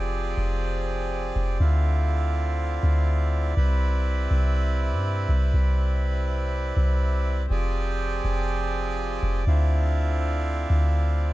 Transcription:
Already playing: 808-style bass F1, accordion F3 C4 G4 G#4 D5
0.37 808-style bass F1
1.36 808-style bass F1
1.60 808-style bass D2, accordion D3 E4 F4
2.83 808-style bass D2
3.56 808-style bass C2, accordion C3 C4 E4 B4
4.31 808-style bass C2
4.92 808-style bass G2
5.29 808-style bass C2
5.54 808-style bass C2
6.77 808-style bass C2
7.50 808-style bass F1, accordion F3 G4 G#4 D5
8.24 808-style bass F1
9.23 808-style bass F1
9.47 808-style bass D2, accordion D3 C4 E4 F4
10.70 808-style bass D2

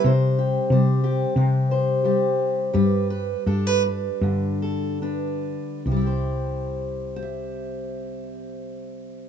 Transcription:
Already playing: clean electric guitar G3 B3 E4, steel-string acoustic guitar G3
0.04 fretless electric bass C3, steel-string acoustic guitar C3 C5
0.39 steel-string acoustic guitar G4
0.70 fretless electric bass C3, steel-string acoustic guitar G3 C5
1.04 steel-string acoustic guitar G4
1.36 fretless electric bass C3, steel-string acoustic guitar C3
1.71 steel-string acoustic guitar C5
2.04 steel-string acoustic guitar G3 G4
2.74 fretless electric bass G2, steel-string acoustic guitar G3 B4
3.10 steel-string acoustic guitar B4
3.46 fretless electric bass G2, steel-string acoustic guitar D4 A4
3.67 steel-string acoustic guitar B4
4.21 fretless electric bass G2, steel-string acoustic guitar D3
4.62 steel-string acoustic guitar A4
5.02 steel-string acoustic guitar D4 B4
5.86 fretless electric bass C2, steel-string acoustic guitar C3
5.92 steel-string acoustic guitar G3
5.96 steel-string acoustic guitar E4
6.02 steel-string acoustic guitar G4
6.06 steel-string acoustic guitar C5
7.16 steel-string acoustic guitar C5
7.23 steel-string acoustic guitar E5

